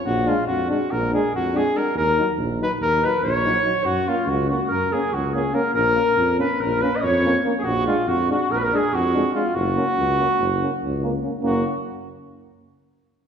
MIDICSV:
0, 0, Header, 1, 6, 480
1, 0, Start_track
1, 0, Key_signature, 6, "major"
1, 0, Tempo, 421644
1, 61, Time_signature, 9, 3, 24, 8
1, 15111, End_track
2, 0, Start_track
2, 0, Title_t, "Clarinet"
2, 0, Program_c, 0, 71
2, 3440, Note_on_c, 0, 71, 81
2, 3673, Note_off_c, 0, 71, 0
2, 3689, Note_on_c, 0, 73, 106
2, 4357, Note_on_c, 0, 66, 88
2, 4374, Note_off_c, 0, 73, 0
2, 4635, Note_on_c, 0, 65, 78
2, 4652, Note_off_c, 0, 66, 0
2, 4841, Note_on_c, 0, 66, 88
2, 4858, Note_off_c, 0, 65, 0
2, 5096, Note_off_c, 0, 66, 0
2, 5103, Note_on_c, 0, 66, 81
2, 5324, Note_off_c, 0, 66, 0
2, 5332, Note_on_c, 0, 70, 91
2, 5598, Note_on_c, 0, 68, 80
2, 5615, Note_off_c, 0, 70, 0
2, 5827, Note_on_c, 0, 66, 85
2, 5844, Note_off_c, 0, 68, 0
2, 6039, Note_off_c, 0, 66, 0
2, 6046, Note_on_c, 0, 68, 68
2, 6306, Note_on_c, 0, 70, 78
2, 6323, Note_off_c, 0, 68, 0
2, 6520, Note_off_c, 0, 70, 0
2, 6526, Note_on_c, 0, 70, 97
2, 7227, Note_off_c, 0, 70, 0
2, 7284, Note_on_c, 0, 71, 97
2, 7521, Note_on_c, 0, 70, 87
2, 7538, Note_off_c, 0, 71, 0
2, 7777, Note_on_c, 0, 71, 92
2, 7794, Note_off_c, 0, 70, 0
2, 7962, Note_on_c, 0, 75, 73
2, 7979, Note_off_c, 0, 71, 0
2, 8021, Note_on_c, 0, 73, 116
2, 8038, Note_off_c, 0, 75, 0
2, 8419, Note_off_c, 0, 73, 0
2, 8667, Note_on_c, 0, 68, 79
2, 8723, Note_on_c, 0, 66, 98
2, 8740, Note_off_c, 0, 68, 0
2, 8964, Note_off_c, 0, 66, 0
2, 8971, Note_on_c, 0, 65, 77
2, 9208, Note_on_c, 0, 66, 94
2, 9225, Note_off_c, 0, 65, 0
2, 9437, Note_off_c, 0, 66, 0
2, 9444, Note_on_c, 0, 66, 83
2, 9692, Note_on_c, 0, 70, 90
2, 9709, Note_off_c, 0, 66, 0
2, 9753, Note_on_c, 0, 71, 76
2, 9770, Note_off_c, 0, 70, 0
2, 9811, Note_on_c, 0, 70, 93
2, 9828, Note_off_c, 0, 71, 0
2, 9953, Note_on_c, 0, 68, 91
2, 9970, Note_off_c, 0, 70, 0
2, 10164, Note_on_c, 0, 66, 88
2, 10181, Note_off_c, 0, 68, 0
2, 10603, Note_off_c, 0, 66, 0
2, 10610, Note_on_c, 0, 65, 75
2, 10854, Note_on_c, 0, 66, 97
2, 10871, Note_off_c, 0, 65, 0
2, 12789, Note_off_c, 0, 66, 0
2, 13016, Note_on_c, 0, 66, 87
2, 13255, Note_off_c, 0, 66, 0
2, 15111, End_track
3, 0, Start_track
3, 0, Title_t, "Flugelhorn"
3, 0, Program_c, 1, 56
3, 70, Note_on_c, 1, 66, 111
3, 319, Note_on_c, 1, 65, 101
3, 336, Note_off_c, 1, 66, 0
3, 531, Note_off_c, 1, 65, 0
3, 538, Note_on_c, 1, 66, 101
3, 780, Note_off_c, 1, 66, 0
3, 807, Note_on_c, 1, 66, 92
3, 1036, Note_on_c, 1, 70, 103
3, 1053, Note_off_c, 1, 66, 0
3, 1285, Note_off_c, 1, 70, 0
3, 1292, Note_on_c, 1, 68, 93
3, 1504, Note_off_c, 1, 68, 0
3, 1539, Note_on_c, 1, 66, 105
3, 1787, Note_on_c, 1, 68, 108
3, 1804, Note_off_c, 1, 66, 0
3, 2014, Note_on_c, 1, 70, 97
3, 2031, Note_off_c, 1, 68, 0
3, 2228, Note_off_c, 1, 70, 0
3, 2238, Note_on_c, 1, 70, 119
3, 2622, Note_off_c, 1, 70, 0
3, 2991, Note_on_c, 1, 71, 102
3, 3088, Note_off_c, 1, 71, 0
3, 3211, Note_on_c, 1, 70, 119
3, 3470, Note_on_c, 1, 71, 102
3, 3487, Note_off_c, 1, 70, 0
3, 3685, Note_off_c, 1, 71, 0
3, 3692, Note_on_c, 1, 73, 118
3, 4388, Note_on_c, 1, 66, 114
3, 4405, Note_off_c, 1, 73, 0
3, 4645, Note_on_c, 1, 65, 99
3, 4662, Note_off_c, 1, 66, 0
3, 4884, Note_on_c, 1, 66, 92
3, 4901, Note_off_c, 1, 65, 0
3, 5125, Note_off_c, 1, 66, 0
3, 5132, Note_on_c, 1, 66, 81
3, 5339, Note_off_c, 1, 66, 0
3, 5357, Note_on_c, 1, 70, 103
3, 5610, Note_on_c, 1, 68, 90
3, 5627, Note_off_c, 1, 70, 0
3, 5848, Note_on_c, 1, 66, 97
3, 5865, Note_off_c, 1, 68, 0
3, 6086, Note_off_c, 1, 66, 0
3, 6100, Note_on_c, 1, 68, 89
3, 6309, Note_on_c, 1, 70, 92
3, 6327, Note_off_c, 1, 68, 0
3, 6529, Note_off_c, 1, 70, 0
3, 6536, Note_on_c, 1, 70, 122
3, 7232, Note_off_c, 1, 70, 0
3, 7280, Note_on_c, 1, 71, 96
3, 7512, Note_on_c, 1, 70, 113
3, 7529, Note_off_c, 1, 71, 0
3, 7755, Note_on_c, 1, 71, 109
3, 7772, Note_off_c, 1, 70, 0
3, 7919, Note_on_c, 1, 75, 77
3, 7936, Note_off_c, 1, 71, 0
3, 7987, Note_on_c, 1, 73, 127
3, 8004, Note_off_c, 1, 75, 0
3, 8402, Note_off_c, 1, 73, 0
3, 8639, Note_on_c, 1, 68, 82
3, 8695, Note_on_c, 1, 66, 110
3, 8712, Note_off_c, 1, 68, 0
3, 8950, Note_off_c, 1, 66, 0
3, 8960, Note_on_c, 1, 65, 100
3, 9195, Note_on_c, 1, 66, 102
3, 9212, Note_off_c, 1, 65, 0
3, 9444, Note_off_c, 1, 66, 0
3, 9465, Note_on_c, 1, 66, 92
3, 9686, Note_on_c, 1, 70, 104
3, 9703, Note_off_c, 1, 66, 0
3, 9774, Note_on_c, 1, 71, 87
3, 9791, Note_off_c, 1, 70, 0
3, 9831, Note_on_c, 1, 70, 96
3, 9848, Note_off_c, 1, 71, 0
3, 9974, Note_on_c, 1, 68, 102
3, 9991, Note_off_c, 1, 70, 0
3, 10187, Note_on_c, 1, 66, 121
3, 10204, Note_off_c, 1, 68, 0
3, 10639, Note_off_c, 1, 66, 0
3, 10646, Note_on_c, 1, 65, 90
3, 10868, Note_on_c, 1, 66, 120
3, 10886, Note_off_c, 1, 65, 0
3, 12797, Note_off_c, 1, 66, 0
3, 13015, Note_on_c, 1, 66, 94
3, 13254, Note_off_c, 1, 66, 0
3, 15111, End_track
4, 0, Start_track
4, 0, Title_t, "Euphonium"
4, 0, Program_c, 2, 58
4, 293, Note_on_c, 2, 62, 77
4, 390, Note_off_c, 2, 62, 0
4, 777, Note_on_c, 2, 62, 70
4, 874, Note_off_c, 2, 62, 0
4, 1279, Note_on_c, 2, 62, 73
4, 1373, Note_off_c, 2, 62, 0
4, 1742, Note_on_c, 2, 62, 81
4, 1837, Note_off_c, 2, 62, 0
4, 1974, Note_on_c, 2, 62, 54
4, 2068, Note_off_c, 2, 62, 0
4, 2473, Note_on_c, 2, 63, 63
4, 2565, Note_off_c, 2, 63, 0
4, 2958, Note_on_c, 2, 63, 66
4, 3050, Note_off_c, 2, 63, 0
4, 3444, Note_on_c, 2, 63, 64
4, 3536, Note_off_c, 2, 63, 0
4, 3921, Note_on_c, 2, 63, 62
4, 4011, Note_off_c, 2, 63, 0
4, 4145, Note_on_c, 2, 63, 46
4, 4236, Note_off_c, 2, 63, 0
4, 4626, Note_on_c, 2, 61, 66
4, 4719, Note_off_c, 2, 61, 0
4, 5106, Note_on_c, 2, 61, 64
4, 5200, Note_off_c, 2, 61, 0
4, 5606, Note_on_c, 2, 61, 64
4, 5698, Note_off_c, 2, 61, 0
4, 6080, Note_on_c, 2, 61, 74
4, 6170, Note_off_c, 2, 61, 0
4, 6293, Note_on_c, 2, 61, 74
4, 6386, Note_off_c, 2, 61, 0
4, 6775, Note_on_c, 2, 61, 67
4, 6870, Note_off_c, 2, 61, 0
4, 7266, Note_on_c, 2, 61, 76
4, 7361, Note_off_c, 2, 61, 0
4, 7755, Note_on_c, 2, 61, 78
4, 7849, Note_off_c, 2, 61, 0
4, 8233, Note_on_c, 2, 61, 78
4, 8325, Note_off_c, 2, 61, 0
4, 8471, Note_on_c, 2, 61, 64
4, 8561, Note_off_c, 2, 61, 0
4, 8953, Note_on_c, 2, 62, 72
4, 9045, Note_off_c, 2, 62, 0
4, 9441, Note_on_c, 2, 62, 71
4, 9533, Note_off_c, 2, 62, 0
4, 9932, Note_on_c, 2, 62, 78
4, 10023, Note_off_c, 2, 62, 0
4, 10401, Note_on_c, 2, 62, 72
4, 10492, Note_off_c, 2, 62, 0
4, 10635, Note_on_c, 2, 62, 59
4, 10724, Note_off_c, 2, 62, 0
4, 11124, Note_on_c, 2, 61, 68
4, 11214, Note_off_c, 2, 61, 0
4, 11595, Note_on_c, 2, 61, 59
4, 11688, Note_off_c, 2, 61, 0
4, 12078, Note_on_c, 2, 61, 63
4, 12172, Note_off_c, 2, 61, 0
4, 12545, Note_on_c, 2, 61, 61
4, 12639, Note_off_c, 2, 61, 0
4, 12776, Note_on_c, 2, 61, 58
4, 12870, Note_off_c, 2, 61, 0
4, 12992, Note_on_c, 2, 61, 68
4, 13242, Note_off_c, 2, 61, 0
4, 15111, End_track
5, 0, Start_track
5, 0, Title_t, "Euphonium"
5, 0, Program_c, 3, 58
5, 323, Note_on_c, 3, 56, 81
5, 414, Note_off_c, 3, 56, 0
5, 809, Note_on_c, 3, 56, 67
5, 900, Note_off_c, 3, 56, 0
5, 1306, Note_on_c, 3, 56, 75
5, 1395, Note_off_c, 3, 56, 0
5, 1777, Note_on_c, 3, 56, 71
5, 1865, Note_off_c, 3, 56, 0
5, 1998, Note_on_c, 3, 56, 62
5, 2087, Note_off_c, 3, 56, 0
5, 2490, Note_on_c, 3, 54, 71
5, 2578, Note_off_c, 3, 54, 0
5, 2970, Note_on_c, 3, 54, 53
5, 3060, Note_off_c, 3, 54, 0
5, 3465, Note_on_c, 3, 54, 65
5, 3553, Note_off_c, 3, 54, 0
5, 3929, Note_on_c, 3, 54, 61
5, 4018, Note_off_c, 3, 54, 0
5, 4153, Note_on_c, 3, 54, 57
5, 4242, Note_off_c, 3, 54, 0
5, 4645, Note_on_c, 3, 58, 65
5, 4734, Note_off_c, 3, 58, 0
5, 5130, Note_on_c, 3, 58, 59
5, 5220, Note_off_c, 3, 58, 0
5, 5600, Note_on_c, 3, 58, 63
5, 5693, Note_off_c, 3, 58, 0
5, 6073, Note_on_c, 3, 58, 72
5, 6165, Note_off_c, 3, 58, 0
5, 6295, Note_on_c, 3, 58, 71
5, 6388, Note_off_c, 3, 58, 0
5, 6771, Note_on_c, 3, 58, 77
5, 6867, Note_off_c, 3, 58, 0
5, 7269, Note_on_c, 3, 58, 68
5, 7363, Note_off_c, 3, 58, 0
5, 7766, Note_on_c, 3, 58, 71
5, 7858, Note_off_c, 3, 58, 0
5, 8245, Note_on_c, 3, 58, 75
5, 8334, Note_off_c, 3, 58, 0
5, 8477, Note_on_c, 3, 58, 78
5, 8566, Note_off_c, 3, 58, 0
5, 8956, Note_on_c, 3, 56, 78
5, 9048, Note_off_c, 3, 56, 0
5, 9436, Note_on_c, 3, 56, 66
5, 9528, Note_off_c, 3, 56, 0
5, 9940, Note_on_c, 3, 56, 69
5, 10029, Note_off_c, 3, 56, 0
5, 10421, Note_on_c, 3, 56, 77
5, 10508, Note_off_c, 3, 56, 0
5, 10639, Note_on_c, 3, 56, 71
5, 10728, Note_off_c, 3, 56, 0
5, 11103, Note_on_c, 3, 58, 68
5, 11197, Note_off_c, 3, 58, 0
5, 11600, Note_on_c, 3, 58, 63
5, 11692, Note_off_c, 3, 58, 0
5, 12096, Note_on_c, 3, 58, 63
5, 12187, Note_off_c, 3, 58, 0
5, 12558, Note_on_c, 3, 58, 68
5, 12650, Note_off_c, 3, 58, 0
5, 12798, Note_on_c, 3, 58, 54
5, 12887, Note_off_c, 3, 58, 0
5, 12998, Note_on_c, 3, 58, 81
5, 13246, Note_off_c, 3, 58, 0
5, 15111, End_track
6, 0, Start_track
6, 0, Title_t, "Tuba"
6, 0, Program_c, 4, 58
6, 64, Note_on_c, 4, 34, 113
6, 331, Note_off_c, 4, 34, 0
6, 531, Note_on_c, 4, 41, 87
6, 802, Note_off_c, 4, 41, 0
6, 1046, Note_on_c, 4, 34, 105
6, 1309, Note_off_c, 4, 34, 0
6, 1527, Note_on_c, 4, 41, 88
6, 1909, Note_off_c, 4, 41, 0
6, 2214, Note_on_c, 4, 39, 100
6, 2482, Note_off_c, 4, 39, 0
6, 2707, Note_on_c, 4, 34, 92
6, 2973, Note_off_c, 4, 34, 0
6, 3188, Note_on_c, 4, 39, 90
6, 3455, Note_off_c, 4, 39, 0
6, 3668, Note_on_c, 4, 34, 102
6, 4054, Note_off_c, 4, 34, 0
6, 4374, Note_on_c, 4, 42, 87
6, 4642, Note_off_c, 4, 42, 0
6, 4850, Note_on_c, 4, 37, 109
6, 5121, Note_off_c, 4, 37, 0
6, 5348, Note_on_c, 4, 42, 83
6, 5615, Note_off_c, 4, 42, 0
6, 5823, Note_on_c, 4, 37, 96
6, 6210, Note_off_c, 4, 37, 0
6, 6536, Note_on_c, 4, 34, 108
6, 6803, Note_off_c, 4, 34, 0
6, 7020, Note_on_c, 4, 41, 102
6, 7288, Note_off_c, 4, 41, 0
6, 7510, Note_on_c, 4, 34, 105
6, 7777, Note_off_c, 4, 34, 0
6, 8001, Note_on_c, 4, 41, 112
6, 8384, Note_off_c, 4, 41, 0
6, 8690, Note_on_c, 4, 34, 98
6, 8959, Note_off_c, 4, 34, 0
6, 9185, Note_on_c, 4, 41, 98
6, 9452, Note_off_c, 4, 41, 0
6, 9664, Note_on_c, 4, 34, 86
6, 9933, Note_off_c, 4, 34, 0
6, 10162, Note_on_c, 4, 41, 104
6, 10545, Note_off_c, 4, 41, 0
6, 10872, Note_on_c, 4, 30, 108
6, 11135, Note_off_c, 4, 30, 0
6, 11354, Note_on_c, 4, 37, 101
6, 11619, Note_off_c, 4, 37, 0
6, 11835, Note_on_c, 4, 30, 104
6, 12102, Note_off_c, 4, 30, 0
6, 12324, Note_on_c, 4, 37, 103
6, 12707, Note_off_c, 4, 37, 0
6, 13008, Note_on_c, 4, 30, 99
6, 13251, Note_off_c, 4, 30, 0
6, 15111, End_track
0, 0, End_of_file